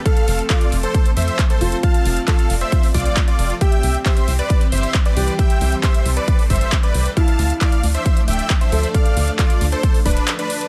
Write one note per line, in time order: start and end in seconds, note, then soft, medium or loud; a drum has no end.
0.00 3.57 A3 medium
0.00 7.13 C4 medium
0.00 3.57 A4 medium
0.06 3.58 F3 medium
0.06 0.63 A4 loud
0.06 0.41 A4 medium
0.06 1.82 C5 medium
0.06 0.41 F5 loud
0.06 kick loud
0.06 closed hi-hat medium
0.17 closed hi-hat medium
0.28 0.41 F1 loud
0.28 open hi-hat loud
0.39 closed hi-hat medium
0.50 0.77 F4 medium
0.50 0.77 D5 loud
0.50 kick loud
0.50 clap loud
0.50 closed hi-hat medium
0.61 closed hi-hat medium
0.72 0.86 F1 medium
0.72 open hi-hat loud
0.83 1.10 A4 medium
0.83 1.10 C5 medium
0.83 closed hi-hat medium
0.94 kick loud
0.94 closed hi-hat medium
1.06 closed hi-hat medium
1.17 1.30 F2 medium
1.17 1.44 C5 medium
1.17 1.44 E5 medium
1.17 open hi-hat loud
1.22 closed hi-hat medium
1.28 closed hi-hat medium
1.39 kick loud
1.39 clap loud
1.39 closed hi-hat medium
1.50 1.77 A4 medium
1.50 1.77 C5 medium
1.50 closed hi-hat soft
1.61 1.75 F1 medium
1.61 3.52 F4 medium
1.61 open hi-hat loud
1.72 closed hi-hat medium
1.83 3.59 D5 medium
1.83 2.19 F5 medium
1.83 2.19 A5 loud
1.83 kick loud
1.83 closed hi-hat medium
1.94 closed hi-hat medium
2.05 2.19 F1 loud
2.05 open hi-hat loud
2.17 closed hi-hat medium
2.28 2.55 A4 medium
2.28 2.55 F5 loud
2.28 kick loud
2.28 clap loud
2.28 closed hi-hat medium
2.39 closed hi-hat medium
2.50 2.64 F1 medium
2.50 open hi-hat loud
2.61 2.88 C5 medium
2.61 2.88 E5 loud
2.61 closed hi-hat medium
2.72 kick loud
2.72 closed hi-hat medium
2.83 open hi-hat medium
2.94 3.08 C2 medium
2.94 3.21 F4 medium
2.94 3.21 D5 medium
2.94 kick medium
2.94 open hi-hat loud
3.00 closed hi-hat medium
3.06 closed hi-hat soft
3.17 kick loud
3.17 clap loud
3.17 closed hi-hat medium
3.28 3.55 F4 medium
3.28 3.55 D5 loud
3.28 closed hi-hat soft
3.39 3.53 F1 medium
3.39 open hi-hat loud
3.50 closed hi-hat medium
3.61 7.13 E3 medium
3.61 7.13 G3 medium
3.61 5.37 G4 medium
3.61 4.19 G4 loud
3.61 7.13 C5 medium
3.61 3.97 E5 medium
3.61 3.97 G5 loud
3.61 kick loud
3.61 closed hi-hat medium
3.72 closed hi-hat medium
3.83 3.97 C2 loud
3.83 open hi-hat loud
3.94 closed hi-hat soft
4.06 4.33 C5 medium
4.06 4.33 E5 loud
4.06 kick loud
4.06 clap loud
4.06 closed hi-hat medium
4.17 closed hi-hat soft
4.28 4.41 C2 medium
4.28 open hi-hat loud
4.39 4.66 B4 medium
4.39 4.66 D5 medium
4.39 closed hi-hat medium
4.50 kick loud
4.50 closed hi-hat medium
4.61 closed hi-hat soft
4.72 4.86 G1 medium
4.72 4.99 C5 medium
4.72 4.99 E5 medium
4.72 open hi-hat loud
4.78 closed hi-hat medium
4.83 closed hi-hat soft
4.94 kick loud
4.94 clap loud
4.94 closed hi-hat medium
5.06 5.33 B4 medium
5.06 5.33 D5 loud
5.06 closed hi-hat soft
5.17 5.30 C2 medium
5.17 7.08 G4 loud
5.17 open hi-hat loud
5.28 closed hi-hat medium
5.39 7.15 A4 medium
5.39 5.75 E5 medium
5.39 5.75 G5 loud
5.39 kick loud
5.39 closed hi-hat medium
5.50 closed hi-hat medium
5.61 5.75 C2 loud
5.61 open hi-hat loud
5.72 closed hi-hat soft
5.83 6.10 C5 medium
5.83 6.10 E5 loud
5.83 kick loud
5.83 clap loud
5.83 closed hi-hat medium
5.94 closed hi-hat medium
6.06 6.19 C2 medium
6.06 open hi-hat loud
6.17 6.44 B4 medium
6.17 6.44 D5 loud
6.17 closed hi-hat medium
6.28 kick loud
6.28 closed hi-hat medium
6.39 open hi-hat medium
6.50 6.64 G1 medium
6.50 6.77 C5 medium
6.50 6.77 E5 medium
6.50 kick medium
6.50 open hi-hat loud
6.56 closed hi-hat medium
6.61 closed hi-hat medium
6.72 kick loud
6.72 clap loud
6.72 closed hi-hat medium
6.83 7.10 B4 medium
6.83 7.10 D5 loud
6.83 closed hi-hat medium
6.94 7.08 C2 medium
6.94 open hi-hat loud
7.06 closed hi-hat medium
7.17 10.68 F3 medium
7.17 10.68 A3 medium
7.17 10.68 D4 medium
7.17 7.75 E4 loud
7.17 10.68 D5 medium
7.17 7.53 F5 medium
7.17 7.53 A5 loud
7.17 kick loud
7.17 closed hi-hat medium
7.28 closed hi-hat medium
7.39 7.53 D2 loud
7.39 open hi-hat loud
7.50 closed hi-hat medium
7.61 7.88 D5 medium
7.61 7.88 F5 loud
7.61 kick loud
7.61 clap loud
7.61 closed hi-hat medium
7.72 closed hi-hat medium
7.83 7.97 D2 medium
7.83 open hi-hat loud
7.95 8.21 C5 medium
7.95 8.21 E5 medium
7.95 closed hi-hat medium
8.06 kick loud
8.06 closed hi-hat medium
8.17 closed hi-hat medium
8.28 8.41 D1 medium
8.28 8.55 E5 medium
8.28 8.55 G5 loud
8.28 open hi-hat loud
8.33 closed hi-hat medium
8.39 closed hi-hat medium
8.50 kick loud
8.50 clap loud
8.50 closed hi-hat medium
8.61 8.88 C5 medium
8.61 8.88 E5 loud
8.61 closed hi-hat medium
8.72 8.86 D2 medium
8.72 10.63 A4 medium
8.72 open hi-hat loud
8.83 closed hi-hat medium
8.94 9.30 D5 medium
8.94 9.30 F5 loud
8.94 kick loud
8.94 closed hi-hat medium
9.06 closed hi-hat medium
9.17 9.30 D2 loud
9.17 open hi-hat loud
9.28 closed hi-hat medium
9.39 9.66 F4 medium
9.39 9.66 D5 loud
9.39 kick loud
9.39 clap loud
9.39 closed hi-hat medium
9.50 closed hi-hat medium
9.61 9.75 D2 medium
9.61 open hi-hat loud
9.72 9.99 A4 medium
9.72 9.99 C5 loud
9.72 closed hi-hat medium
9.83 kick loud
9.83 closed hi-hat medium
9.94 open hi-hat medium
10.06 10.19 D1 medium
10.06 10.33 D4 medium
10.06 10.33 B4 medium
10.06 kick medium
10.06 open hi-hat loud
10.11 closed hi-hat medium
10.17 closed hi-hat medium
10.28 clap loud
10.28 closed hi-hat medium
10.39 10.66 D4 medium
10.39 10.66 B4 medium
10.39 closed hi-hat medium
10.50 open hi-hat loud
10.61 closed hi-hat medium